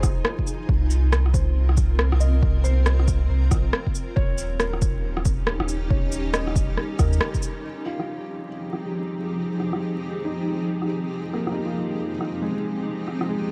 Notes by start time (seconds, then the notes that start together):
Already playing: D#4 F4 G#4 G#5
0.00 D#1 C5, kick, cross-stick, shaker
0.25 cross-stick
0.39 kick
0.47 shaker
0.69 C2 C4 A#4, kick
0.90 shaker
1.12 cross-stick, shaker
1.26 cross-stick
1.33 C5, kick, shaker
1.69 cross-stick
1.77 kick, shaker
1.99 cross-stick
2.12 C2, cross-stick
2.20 D#5, shaker
2.43 C2, kick
2.64 C5, shaker
2.86 cross-stick, shaker
2.99 cross-stick
3.08 kick, shaker
3.29 C2
3.51 A#1, kick, cross-stick, shaker
3.73 cross-stick
3.87 kick
3.95 shaker
4.16 D#1 C#4 D#4 G4 C#5, kick
4.38 shaker
4.60 A#4, cross-stick, shaker
4.73 cross-stick
4.82 kick, shaker
5.17 cross-stick
5.25 kick, shaker
5.47 cross-stick
5.60 D#1, cross-stick
5.69 shaker
5.90 D#1 C#5, kick
6.12 shaker
6.33 D#5, cross-stick, shaker
6.47 cross-stick
6.56 kick, shaker
6.77 cross-stick
6.99 D#2 A#4, kick, cross-stick, shaker
7.13 shaker
7.21 cross-stick
7.34 kick, shaker
7.42 shaker
7.65 F3 C4 D#4 G4 G#4
7.86 F4, cross-stick
7.99 cross-stick
8.73 cross-stick
9.60 cross-stick
9.73 cross-stick
10.25 D#4
10.82 cross-stick
11.33 A#3, cross-stick
11.47 cross-stick
11.52 D#4
11.65 F4
12.21 cross-stick
12.42 G#3
13.08 cross-stick
13.21 cross-stick
13.29 G#3